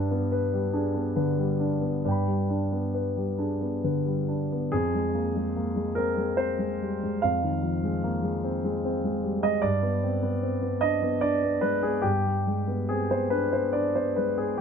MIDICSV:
0, 0, Header, 1, 2, 480
1, 0, Start_track
1, 0, Tempo, 823045
1, 665, Tempo, 894188
1, 1139, Time_signature, 3, 2, 24, 8
1, 2585, Tempo, 843882
1, 3065, Tempo, 835655
1, 4025, Tempo, 796813
1, 6425, Tempo, 837989
1, 8367, End_track
2, 0, Start_track
2, 0, Title_t, "Grand piano"
2, 0, Program_c, 0, 0
2, 0, Control_c, 0, 64, 127
2, 0, Note_on_c, 0, 43, 59
2, 0, Note_on_c, 0, 55, 43
2, 0, Note_on_c, 0, 62, 47
2, 0, Note_on_c, 0, 71, 52
2, 66, Note_on_c, 0, 59, 43
2, 87, Note_off_c, 0, 71, 0
2, 133, Note_off_c, 0, 62, 0
2, 186, Note_on_c, 0, 71, 50
2, 310, Note_off_c, 0, 55, 0
2, 310, Note_on_c, 0, 55, 42
2, 428, Note_on_c, 0, 62, 46
2, 429, Note_on_c, 0, 68, 42
2, 446, Note_off_c, 0, 59, 0
2, 498, Note_off_c, 0, 55, 0
2, 548, Note_on_c, 0, 59, 41
2, 569, Note_off_c, 0, 71, 0
2, 620, Note_off_c, 0, 62, 0
2, 669, Note_off_c, 0, 68, 0
2, 677, Note_on_c, 0, 71, 46
2, 678, Note_on_c, 0, 50, 40
2, 737, Note_off_c, 0, 59, 0
2, 795, Note_on_c, 0, 55, 39
2, 857, Note_off_c, 0, 50, 0
2, 912, Note_on_c, 0, 62, 39
2, 976, Note_off_c, 0, 55, 0
2, 1026, Note_on_c, 0, 59, 34
2, 1047, Note_off_c, 0, 71, 0
2, 1117, Note_off_c, 0, 43, 0
2, 1151, Control_c, 0, 64, 0
2, 1153, Note_on_c, 0, 43, 45
2, 1153, Note_on_c, 0, 71, 40
2, 1155, Note_on_c, 0, 74, 30
2, 1170, Note_on_c, 0, 79, 30
2, 1185, Note_on_c, 0, 83, 29
2, 1217, Note_off_c, 0, 59, 0
2, 1251, Control_c, 0, 64, 127
2, 1270, Note_on_c, 0, 55, 32
2, 1293, Note_off_c, 0, 62, 0
2, 1394, Note_on_c, 0, 62, 38
2, 1461, Note_off_c, 0, 55, 0
2, 1515, Note_on_c, 0, 59, 33
2, 1537, Note_off_c, 0, 71, 0
2, 1633, Note_on_c, 0, 71, 36
2, 1753, Note_on_c, 0, 55, 32
2, 1776, Note_off_c, 0, 62, 0
2, 1870, Note_on_c, 0, 62, 37
2, 1871, Note_on_c, 0, 68, 35
2, 1893, Note_off_c, 0, 59, 0
2, 1940, Note_off_c, 0, 55, 0
2, 1990, Note_on_c, 0, 59, 31
2, 2011, Note_off_c, 0, 71, 0
2, 2058, Note_off_c, 0, 62, 0
2, 2107, Note_off_c, 0, 68, 0
2, 2115, Note_on_c, 0, 50, 32
2, 2115, Note_on_c, 0, 71, 39
2, 2179, Note_off_c, 0, 59, 0
2, 2232, Note_on_c, 0, 55, 34
2, 2303, Note_off_c, 0, 50, 0
2, 2352, Note_on_c, 0, 62, 34
2, 2424, Note_off_c, 0, 55, 0
2, 2480, Note_on_c, 0, 59, 32
2, 2497, Note_off_c, 0, 71, 0
2, 2570, Note_off_c, 0, 43, 0
2, 2571, Note_off_c, 0, 74, 0
2, 2579, Note_off_c, 0, 79, 0
2, 2585, Note_on_c, 0, 68, 74
2, 2586, Note_off_c, 0, 83, 0
2, 2587, Note_off_c, 0, 62, 0
2, 2591, Note_off_c, 0, 59, 0
2, 2593, Control_c, 0, 64, 0
2, 2593, Note_on_c, 0, 41, 50
2, 2707, Control_c, 0, 64, 127
2, 2716, Note_on_c, 0, 56, 35
2, 2829, Note_on_c, 0, 58, 35
2, 2903, Note_off_c, 0, 56, 0
2, 2947, Note_off_c, 0, 58, 0
2, 2951, Note_on_c, 0, 56, 36
2, 3066, Note_on_c, 0, 58, 35
2, 3139, Note_off_c, 0, 56, 0
2, 3179, Note_on_c, 0, 56, 38
2, 3185, Note_off_c, 0, 58, 0
2, 3290, Note_on_c, 0, 70, 74
2, 3301, Note_on_c, 0, 60, 45
2, 3302, Note_off_c, 0, 68, 0
2, 3370, Note_off_c, 0, 56, 0
2, 3416, Note_on_c, 0, 56, 38
2, 3490, Note_off_c, 0, 60, 0
2, 3530, Note_on_c, 0, 72, 74
2, 3532, Note_off_c, 0, 70, 0
2, 3537, Note_on_c, 0, 60, 42
2, 3607, Note_off_c, 0, 56, 0
2, 3655, Note_on_c, 0, 56, 37
2, 3731, Note_off_c, 0, 60, 0
2, 3782, Note_on_c, 0, 55, 32
2, 3855, Note_off_c, 0, 56, 0
2, 3905, Note_off_c, 0, 55, 0
2, 3910, Note_on_c, 0, 56, 36
2, 4006, Note_off_c, 0, 41, 0
2, 4018, Note_on_c, 0, 77, 77
2, 4021, Note_off_c, 0, 72, 0
2, 4027, Note_on_c, 0, 41, 47
2, 4034, Control_c, 0, 64, 0
2, 4101, Note_off_c, 0, 56, 0
2, 4145, Control_c, 0, 64, 127
2, 4147, Note_on_c, 0, 51, 38
2, 4264, Note_on_c, 0, 53, 36
2, 4338, Note_off_c, 0, 51, 0
2, 4385, Note_off_c, 0, 53, 0
2, 4388, Note_on_c, 0, 56, 42
2, 4510, Note_on_c, 0, 58, 36
2, 4581, Note_off_c, 0, 56, 0
2, 4625, Note_on_c, 0, 56, 40
2, 4630, Note_off_c, 0, 58, 0
2, 4752, Note_on_c, 0, 60, 45
2, 4822, Note_off_c, 0, 56, 0
2, 4876, Note_on_c, 0, 56, 40
2, 4945, Note_off_c, 0, 60, 0
2, 4997, Note_on_c, 0, 60, 45
2, 5065, Note_off_c, 0, 56, 0
2, 5114, Note_on_c, 0, 56, 42
2, 5184, Note_off_c, 0, 60, 0
2, 5232, Note_on_c, 0, 55, 37
2, 5302, Note_off_c, 0, 56, 0
2, 5344, Note_off_c, 0, 77, 0
2, 5349, Note_off_c, 0, 55, 0
2, 5349, Note_on_c, 0, 75, 75
2, 5350, Note_on_c, 0, 56, 44
2, 5444, Note_off_c, 0, 41, 0
2, 5461, Note_on_c, 0, 74, 85
2, 5467, Note_off_c, 0, 75, 0
2, 5468, Note_off_c, 0, 56, 0
2, 5471, Note_on_c, 0, 43, 56
2, 5476, Control_c, 0, 64, 0
2, 5588, Control_c, 0, 64, 127
2, 5588, Note_on_c, 0, 59, 43
2, 5711, Note_on_c, 0, 60, 40
2, 5779, Note_off_c, 0, 59, 0
2, 5829, Note_off_c, 0, 60, 0
2, 5829, Note_on_c, 0, 59, 46
2, 5948, Note_on_c, 0, 60, 41
2, 6019, Note_off_c, 0, 59, 0
2, 6067, Note_off_c, 0, 60, 0
2, 6067, Note_on_c, 0, 59, 40
2, 6179, Note_on_c, 0, 75, 83
2, 6182, Note_off_c, 0, 74, 0
2, 6188, Note_on_c, 0, 62, 44
2, 6257, Note_off_c, 0, 59, 0
2, 6309, Note_on_c, 0, 59, 42
2, 6378, Note_off_c, 0, 62, 0
2, 6422, Note_off_c, 0, 75, 0
2, 6422, Note_on_c, 0, 74, 81
2, 6430, Note_on_c, 0, 62, 44
2, 6497, Note_off_c, 0, 59, 0
2, 6544, Note_on_c, 0, 59, 38
2, 6614, Note_off_c, 0, 62, 0
2, 6652, Note_on_c, 0, 71, 73
2, 6657, Note_off_c, 0, 74, 0
2, 6658, Note_on_c, 0, 56, 35
2, 6731, Note_off_c, 0, 59, 0
2, 6774, Note_off_c, 0, 71, 0
2, 6775, Note_on_c, 0, 68, 66
2, 6776, Note_on_c, 0, 59, 38
2, 6777, Note_off_c, 0, 56, 0
2, 6877, Note_off_c, 0, 43, 0
2, 6884, Note_on_c, 0, 67, 70
2, 6892, Note_on_c, 0, 43, 48
2, 6896, Note_off_c, 0, 68, 0
2, 6907, Control_c, 0, 64, 0
2, 6970, Note_off_c, 0, 59, 0
2, 7020, Control_c, 0, 64, 127
2, 7023, Note_on_c, 0, 55, 35
2, 7144, Note_on_c, 0, 56, 33
2, 7215, Note_off_c, 0, 55, 0
2, 7261, Note_on_c, 0, 59, 37
2, 7263, Note_off_c, 0, 56, 0
2, 7376, Note_off_c, 0, 67, 0
2, 7382, Note_on_c, 0, 68, 67
2, 7389, Note_on_c, 0, 60, 33
2, 7455, Note_off_c, 0, 59, 0
2, 7503, Note_off_c, 0, 68, 0
2, 7507, Note_off_c, 0, 60, 0
2, 7509, Note_on_c, 0, 59, 35
2, 7509, Note_on_c, 0, 72, 61
2, 7621, Note_on_c, 0, 71, 73
2, 7627, Note_off_c, 0, 72, 0
2, 7629, Note_on_c, 0, 62, 39
2, 7698, Note_off_c, 0, 59, 0
2, 7742, Note_off_c, 0, 71, 0
2, 7749, Note_on_c, 0, 59, 34
2, 7749, Note_on_c, 0, 72, 56
2, 7818, Note_off_c, 0, 62, 0
2, 7863, Note_on_c, 0, 74, 69
2, 7866, Note_off_c, 0, 72, 0
2, 7873, Note_on_c, 0, 62, 39
2, 7938, Note_off_c, 0, 59, 0
2, 7983, Note_off_c, 0, 74, 0
2, 7993, Note_on_c, 0, 59, 35
2, 7993, Note_on_c, 0, 72, 55
2, 8061, Note_off_c, 0, 62, 0
2, 8110, Note_off_c, 0, 72, 0
2, 8113, Note_on_c, 0, 71, 59
2, 8120, Note_on_c, 0, 56, 29
2, 8183, Note_off_c, 0, 59, 0
2, 8230, Note_off_c, 0, 71, 0
2, 8234, Note_off_c, 0, 56, 0
2, 8235, Note_on_c, 0, 68, 58
2, 8236, Note_on_c, 0, 59, 35
2, 8321, Note_off_c, 0, 43, 0
2, 8349, Note_on_c, 0, 67, 67
2, 8351, Note_off_c, 0, 68, 0
2, 8352, Note_off_c, 0, 59, 0
2, 8358, Control_c, 0, 64, 0
2, 8367, Note_off_c, 0, 67, 0
2, 8367, End_track
0, 0, End_of_file